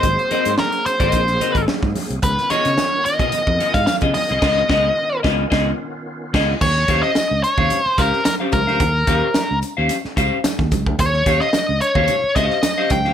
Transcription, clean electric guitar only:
X:1
M:4/4
L:1/16
Q:1/4=110
K:Dblyd
V:1 name="Clean electric guitar"
z2 [C_GBe] z4 [CGBe] z2 [CGBe] z4 z | z2 [_CFAe] z4 [CFAe] z2 [CFAe] z2 [CFAe] z [CFAe] | [_CFAe]2 [CFAe]2 z2 [CFAe]2 [CFAe]2 z4 [CFAe]2 | z2 [DGcf] z4 [DGcf] z2 [DGcf] z2 [DGcf] z [DGcf] |
z2 [DGcf] z4 [DGcf] z2 [DGcf] z4 z | z2 [DGcf] z4 [DGcf] z2 [DGcf] z2 [DGcf] z [DGcf] |]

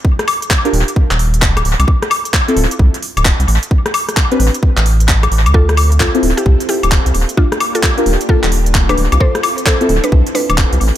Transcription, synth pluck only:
X:1
M:4/4
L:1/16
Q:"Swing 16ths" 1/4=131
K:Dm
V:1 name="Synth pluck"
z16 | z16 | z16 | [FA]2 z2 [FA]2 z [EG]2 z [EG]2 z4 |
[DF]2 z [FA] z4 [FA] z4 [D=B]2 z | [Ac]2 z2 [Ac]2 z [D=B]2 z [DB]2 z4 |]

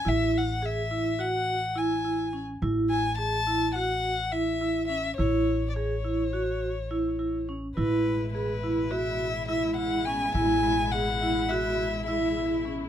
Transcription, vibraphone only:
X:1
M:9/8
L:1/8
Q:3/8=70
K:A
V:1 name="Vibraphone"
E2 G E F2 E E C | E2 G E F2 E E C | E2 G E F2 E E C | E2 G E F2 E E C |
E2 G E F2 E E C |]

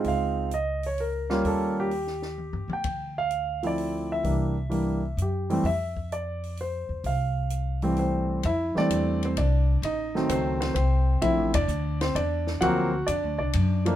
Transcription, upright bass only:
X:1
M:3/4
L:1/8
Q:"Swing" 1/4=129
K:F
V:1 name="Upright bass" clef=bass
_D,,6 | _E,,4- (3E,, G,, A,, | D,,6 | C,,4 _G,,2 |
F,,4- F,, E,, | C,,6 | F,, z E,,2 C,,2 | A,,,2 _D,,2 C,,2 |
(3B,,, A,,, F,,, D,,2 E,,2 | D,,2 (3^E,, D,, C,, ^F,,2 |]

